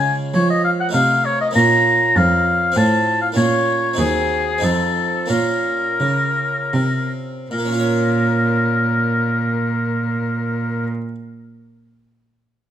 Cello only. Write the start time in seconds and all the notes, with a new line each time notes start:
Already playing: C#3
0.34 F3
0.94 C3
1.56 A#2
2.16 F2
2.76 A2
3.36 A#2
3.98 D#2
4.62 F2
5.30 A#2
6.00 C#3
6.73 C3
7.51 A#2